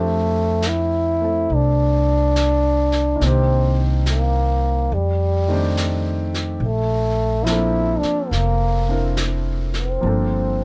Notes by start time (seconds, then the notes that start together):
Already playing: F2 F3 A3 C4 D4 G4
0.62 snare, hi-hat pedal
0.68 E4
1.21 A3 C4 A4
1.49 C2, brush sweep
1.55 D4
2.36 snare, hi-hat pedal
2.92 snare
3.16 D#3 A#3
3.21 C2 C4 D4, brush sweep, snare
3.26 C4 G4
4.06 A#3, snare, hi-hat pedal
4.92 F2 G3, brush sweep
5.48 D#3 A3 C4 D4
5.53 G4
5.77 snare, hi-hat pedal
6.34 snare
6.60 A#1 A3, brush sweep
7.43 F3 A#3 E4, snare, hi-hat pedal
7.48 C4 D4 A4
7.99 D4, muted upright bass stroke, snare
8.30 F1 A#3, brush sweep, snare
8.88 C4 D4 E4 A#4
9.17 snare, hi-hat pedal
9.74 snare
9.79 C4
10.01 G1 F3 A#3 C4 D4, brush sweep
10.06 A4